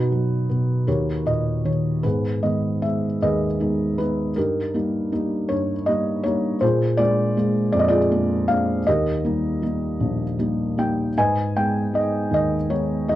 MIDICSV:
0, 0, Header, 1, 2, 480
1, 0, Start_track
1, 0, Key_signature, 5, "minor"
1, 0, Tempo, 776197
1, 1265, Time_signature, 6, 3, 24, 8
1, 2233, Tempo, 750939
1, 5593, Tempo, 766284
1, 8278, End_track
2, 0, Start_track
2, 0, Title_t, "Felt piano"
2, 0, Program_c, 0, 0
2, 0, Control_c, 0, 64, 127
2, 0, Note_on_c, 0, 47, 53
2, 0, Note_on_c, 0, 63, 51
2, 0, Note_on_c, 0, 66, 51
2, 0, Note_on_c, 0, 71, 75
2, 73, Note_on_c, 0, 54, 44
2, 297, Note_off_c, 0, 47, 0
2, 306, Note_on_c, 0, 47, 41
2, 528, Note_off_c, 0, 54, 0
2, 534, Note_off_c, 0, 47, 0
2, 540, Note_on_c, 0, 70, 44
2, 543, Note_on_c, 0, 39, 51
2, 544, Note_on_c, 0, 67, 43
2, 545, Note_on_c, 0, 73, 62
2, 549, Control_c, 0, 64, 0
2, 666, Control_c, 0, 64, 127
2, 759, Note_off_c, 0, 63, 0
2, 759, Note_off_c, 0, 71, 0
2, 761, Note_off_c, 0, 66, 0
2, 777, Note_on_c, 0, 46, 36
2, 783, Note_on_c, 0, 75, 60
2, 789, Note_off_c, 0, 73, 0
2, 1019, Note_on_c, 0, 51, 39
2, 1022, Note_on_c, 0, 73, 57
2, 1030, Note_off_c, 0, 75, 0
2, 1240, Note_off_c, 0, 70, 0
2, 1242, Note_off_c, 0, 67, 0
2, 1244, Note_off_c, 0, 39, 0
2, 1248, Note_off_c, 0, 73, 0
2, 1249, Note_off_c, 0, 46, 0
2, 1255, Note_on_c, 0, 71, 60
2, 1257, Note_off_c, 0, 51, 0
2, 1259, Note_on_c, 0, 44, 42
2, 1259, Note_on_c, 0, 68, 42
2, 1263, Note_on_c, 0, 59, 41
2, 1271, Control_c, 0, 64, 0
2, 1378, Control_c, 0, 64, 127
2, 1494, Note_off_c, 0, 59, 0
2, 1500, Note_on_c, 0, 75, 60
2, 1502, Note_on_c, 0, 56, 36
2, 1503, Note_on_c, 0, 59, 31
2, 1507, Note_on_c, 0, 51, 37
2, 1512, Note_off_c, 0, 71, 0
2, 1737, Note_off_c, 0, 56, 0
2, 1737, Note_off_c, 0, 59, 0
2, 1745, Note_on_c, 0, 76, 62
2, 1746, Note_on_c, 0, 56, 33
2, 1746, Note_on_c, 0, 59, 30
2, 1755, Note_off_c, 0, 75, 0
2, 1895, Note_off_c, 0, 51, 0
2, 1966, Note_off_c, 0, 68, 0
2, 1994, Note_on_c, 0, 39, 51
2, 1995, Note_on_c, 0, 75, 65
2, 1997, Note_off_c, 0, 76, 0
2, 1997, Note_on_c, 0, 71, 47
2, 1999, Note_on_c, 0, 68, 50
2, 2132, Note_off_c, 0, 56, 0
2, 2132, Note_off_c, 0, 59, 0
2, 2226, Note_on_c, 0, 56, 36
2, 2231, Note_on_c, 0, 59, 32
2, 2232, Note_on_c, 0, 63, 39
2, 2460, Note_off_c, 0, 71, 0
2, 2464, Note_off_c, 0, 56, 0
2, 2469, Note_off_c, 0, 59, 0
2, 2470, Note_on_c, 0, 71, 62
2, 2472, Note_off_c, 0, 63, 0
2, 2474, Note_on_c, 0, 56, 39
2, 2479, Note_on_c, 0, 59, 36
2, 2481, Note_on_c, 0, 63, 45
2, 2491, Note_off_c, 0, 75, 0
2, 2667, Note_off_c, 0, 56, 0
2, 2670, Note_off_c, 0, 59, 0
2, 2671, Note_off_c, 0, 63, 0
2, 2687, Note_off_c, 0, 44, 0
2, 2693, Note_off_c, 0, 68, 0
2, 2694, Note_off_c, 0, 39, 0
2, 2713, Note_on_c, 0, 70, 68
2, 2715, Note_on_c, 0, 43, 51
2, 2720, Note_off_c, 0, 71, 0
2, 2723, Note_on_c, 0, 63, 49
2, 2724, Control_c, 0, 64, 0
2, 2724, Note_on_c, 0, 67, 46
2, 2855, Control_c, 0, 64, 127
2, 2955, Note_off_c, 0, 63, 0
2, 2956, Note_on_c, 0, 55, 40
2, 2959, Note_on_c, 0, 58, 34
2, 2964, Note_on_c, 0, 63, 45
2, 3189, Note_off_c, 0, 55, 0
2, 3191, Note_off_c, 0, 58, 0
2, 3193, Note_off_c, 0, 63, 0
2, 3199, Note_on_c, 0, 55, 39
2, 3201, Note_on_c, 0, 58, 38
2, 3202, Note_on_c, 0, 63, 44
2, 3415, Note_off_c, 0, 67, 0
2, 3429, Note_off_c, 0, 43, 0
2, 3431, Note_on_c, 0, 73, 76
2, 3439, Note_on_c, 0, 43, 54
2, 3457, Note_off_c, 0, 70, 0
2, 3583, Note_off_c, 0, 55, 0
2, 3585, Note_off_c, 0, 58, 0
2, 3585, Note_off_c, 0, 63, 0
2, 3670, Note_on_c, 0, 75, 71
2, 3677, Note_on_c, 0, 55, 40
2, 3682, Note_off_c, 0, 73, 0
2, 3682, Note_on_c, 0, 58, 39
2, 3687, Note_on_c, 0, 63, 45
2, 3897, Note_off_c, 0, 75, 0
2, 3909, Note_on_c, 0, 73, 74
2, 3912, Note_off_c, 0, 58, 0
2, 3913, Note_off_c, 0, 55, 0
2, 3917, Note_off_c, 0, 63, 0
2, 3921, Note_on_c, 0, 58, 41
2, 3923, Note_on_c, 0, 55, 43
2, 3926, Note_on_c, 0, 63, 48
2, 4111, Note_off_c, 0, 58, 0
2, 4112, Note_off_c, 0, 55, 0
2, 4114, Note_off_c, 0, 63, 0
2, 4136, Note_off_c, 0, 43, 0
2, 4150, Note_on_c, 0, 72, 79
2, 4153, Note_on_c, 0, 46, 57
2, 4158, Note_on_c, 0, 68, 56
2, 4160, Note_off_c, 0, 73, 0
2, 4160, Note_on_c, 0, 65, 58
2, 4165, Control_c, 0, 64, 0
2, 4270, Control_c, 0, 64, 127
2, 4381, Note_off_c, 0, 65, 0
2, 4383, Note_on_c, 0, 74, 92
2, 4384, Note_off_c, 0, 68, 0
2, 4390, Note_on_c, 0, 65, 64
2, 4391, Note_on_c, 0, 56, 41
2, 4393, Note_on_c, 0, 68, 64
2, 4395, Note_on_c, 0, 58, 39
2, 4399, Note_off_c, 0, 72, 0
2, 4399, Note_on_c, 0, 62, 49
2, 4626, Note_off_c, 0, 56, 0
2, 4627, Note_off_c, 0, 58, 0
2, 4630, Note_off_c, 0, 62, 0
2, 4635, Note_on_c, 0, 56, 45
2, 4636, Note_on_c, 0, 58, 38
2, 4639, Note_on_c, 0, 62, 45
2, 4853, Note_off_c, 0, 74, 0
2, 4862, Note_on_c, 0, 74, 85
2, 4869, Note_on_c, 0, 41, 61
2, 4906, Note_on_c, 0, 75, 75
2, 4912, Note_off_c, 0, 74, 0
2, 4954, Note_off_c, 0, 75, 0
2, 4961, Note_off_c, 0, 65, 0
2, 4965, Note_on_c, 0, 74, 87
2, 4966, Note_off_c, 0, 68, 0
2, 4970, Note_on_c, 0, 65, 63
2, 4976, Note_on_c, 0, 68, 64
2, 5016, Note_off_c, 0, 56, 0
2, 5017, Note_off_c, 0, 58, 0
2, 5019, Note_off_c, 0, 62, 0
2, 5113, Note_on_c, 0, 56, 42
2, 5113, Note_on_c, 0, 58, 39
2, 5113, Note_on_c, 0, 62, 46
2, 5339, Note_off_c, 0, 56, 0
2, 5343, Note_off_c, 0, 58, 0
2, 5346, Note_off_c, 0, 62, 0
2, 5347, Note_on_c, 0, 77, 83
2, 5348, Note_on_c, 0, 56, 44
2, 5353, Note_on_c, 0, 58, 42
2, 5355, Note_on_c, 0, 62, 49
2, 5365, Note_off_c, 0, 74, 0
2, 5542, Note_off_c, 0, 56, 0
2, 5544, Note_off_c, 0, 58, 0
2, 5546, Note_off_c, 0, 62, 0
2, 5563, Note_off_c, 0, 46, 0
2, 5568, Note_off_c, 0, 41, 0
2, 5571, Note_off_c, 0, 65, 0
2, 5574, Note_off_c, 0, 68, 0
2, 5593, Note_on_c, 0, 75, 83
2, 5596, Note_off_c, 0, 77, 0
2, 5597, Control_c, 0, 64, 0
2, 5599, Note_on_c, 0, 70, 55
2, 5602, Note_on_c, 0, 39, 55
2, 5603, Note_on_c, 0, 67, 53
2, 5702, Control_c, 0, 64, 127
2, 5829, Note_on_c, 0, 55, 40
2, 5832, Note_on_c, 0, 58, 35
2, 5837, Note_on_c, 0, 63, 45
2, 6056, Note_off_c, 0, 55, 0
2, 6060, Note_off_c, 0, 58, 0
2, 6062, Note_off_c, 0, 63, 0
2, 6065, Note_on_c, 0, 55, 38
2, 6070, Note_on_c, 0, 58, 34
2, 6071, Note_on_c, 0, 63, 45
2, 6306, Note_on_c, 0, 34, 49
2, 6451, Note_off_c, 0, 55, 0
2, 6453, Note_off_c, 0, 58, 0
2, 6455, Note_off_c, 0, 63, 0
2, 6524, Note_off_c, 0, 75, 0
2, 6527, Note_off_c, 0, 70, 0
2, 6529, Note_off_c, 0, 67, 0
2, 6548, Note_on_c, 0, 55, 37
2, 6548, Note_on_c, 0, 58, 34
2, 6552, Note_on_c, 0, 63, 40
2, 6781, Note_off_c, 0, 55, 0
2, 6781, Note_off_c, 0, 58, 0
2, 6785, Note_off_c, 0, 63, 0
2, 6790, Note_on_c, 0, 55, 37
2, 6790, Note_on_c, 0, 58, 35
2, 6794, Note_on_c, 0, 63, 41
2, 6796, Note_on_c, 0, 79, 66
2, 6985, Note_off_c, 0, 55, 0
2, 6985, Note_off_c, 0, 58, 0
2, 6987, Note_off_c, 0, 63, 0
2, 7012, Note_off_c, 0, 34, 0
2, 7014, Note_off_c, 0, 39, 0
2, 7020, Note_off_c, 0, 79, 0
2, 7036, Note_on_c, 0, 44, 47
2, 7040, Note_on_c, 0, 80, 81
2, 7041, Control_c, 0, 64, 0
2, 7041, Note_on_c, 0, 75, 59
2, 7042, Note_on_c, 0, 71, 60
2, 7137, Control_c, 0, 64, 127
2, 7279, Note_on_c, 0, 56, 39
2, 7282, Note_on_c, 0, 79, 80
2, 7284, Note_on_c, 0, 59, 35
2, 7287, Note_off_c, 0, 80, 0
2, 7287, Note_on_c, 0, 63, 41
2, 7504, Note_off_c, 0, 56, 0
2, 7507, Note_off_c, 0, 59, 0
2, 7508, Note_off_c, 0, 63, 0
2, 7513, Note_off_c, 0, 75, 0
2, 7514, Note_on_c, 0, 56, 39
2, 7517, Note_on_c, 0, 59, 36
2, 7517, Note_on_c, 0, 63, 40
2, 7522, Note_on_c, 0, 75, 74
2, 7527, Note_off_c, 0, 79, 0
2, 7734, Note_off_c, 0, 71, 0
2, 7748, Note_on_c, 0, 39, 52
2, 7757, Note_off_c, 0, 75, 0
2, 7766, Note_on_c, 0, 75, 78
2, 7895, Note_off_c, 0, 56, 0
2, 7897, Note_off_c, 0, 59, 0
2, 7898, Note_off_c, 0, 63, 0
2, 7990, Note_on_c, 0, 56, 37
2, 7992, Note_on_c, 0, 73, 65
2, 7994, Note_on_c, 0, 59, 37
2, 7994, Note_on_c, 0, 63, 45
2, 8005, Note_off_c, 0, 75, 0
2, 8222, Note_off_c, 0, 59, 0
2, 8224, Note_off_c, 0, 56, 0
2, 8230, Note_off_c, 0, 63, 0
2, 8232, Note_on_c, 0, 59, 42
2, 8233, Note_on_c, 0, 56, 45
2, 8237, Note_off_c, 0, 73, 0
2, 8238, Note_on_c, 0, 75, 75
2, 8239, Note_on_c, 0, 63, 50
2, 8278, Note_off_c, 0, 39, 0
2, 8278, Note_off_c, 0, 44, 0
2, 8278, Note_off_c, 0, 56, 0
2, 8278, Note_off_c, 0, 59, 0
2, 8278, Note_off_c, 0, 63, 0
2, 8278, Note_off_c, 0, 75, 0
2, 8278, End_track
0, 0, End_of_file